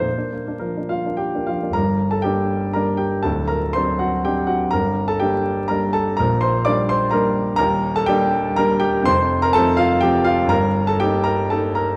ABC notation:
X:1
M:3/4
L:1/16
Q:1/4=122
K:Bb
V:1 name="Grand piano"
c4 B2 [Ff]2 [Gg]2 [Ff]2 | [K:Gm] [Bb]3 [Aa] [Gg]4 [Bb]2 [Gg]2 | [Aa]2 [Bb]2 [cc']2 [^F^f]2 [Gg]2 [Ff]2 | [Bb]3 [Aa] [Gg]4 [Bb]2 [Aa]2 |
[Bb]2 [cc']2 [dd']2 [cc']2 [Bb]2 z2 | [K:Eblyd] [Bb]3 [Aa] [Gg]4 [Bb]2 [Gg]2 | [cc']3 [Bb] [Aa]2 [Ff]2 [Gg]2 [Ff]2 | [Bb]3 [Aa] [Gg]2 [Bb]2 [Aa]2 [Bb]2 |]
V:2 name="Grand piano"
B,, [B,D] B, [B,D] F, [B,D] B, [B,D]2 [B,D] F, [B,D] | [K:Gm] [G,,,G,,]4 [G,B,D]4 [G,B,D]4 | [D,,,D,,]4 [^F,CD]4 [F,CD]4 | [G,,,G,,]4 [G,B,D]4 [G,B,D]4 |
[B,,,B,,]4 [G,B,D]4 [G,B,D]4 | [K:Eblyd] [E,,,E,,]4 [G,B,D]4 [G,B,D]4 | [F,,,F,,]4 [F,A,C]4 [F,A,C]4 | [G,,,G,,]4 [B,E]4 [B,E]4 |]